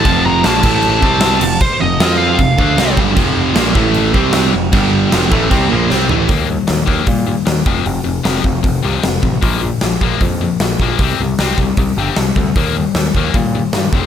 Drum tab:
CC |x-xxx-xx|x-x-x-x-|x-x-x-x-|x-x-x---|
HH |--------|--------|--------|--------|
SD |--o---o-|--o---o-|--o---o-|--o---o-|
FT |--------|--------|--------|-------o|
BD |o--o-o--|o---oo-o|o--o-o--|o--oo---|

CC |--------|--------|--------|--------|
HH |o-o-o-o-|o-o-o-o-|o-o-o-o-|o-o-o-o-|
SD |--o---o-|--o---o-|--o---o-|--o---o-|
FT |--------|--------|--------|--------|
BD |o--oo--o|---oo--o|o--oo--o|o--oo--o|

CC |--------|
HH |o-o-o-o-|
SD |--o---o-|
FT |--------|
BD |o--oo--o|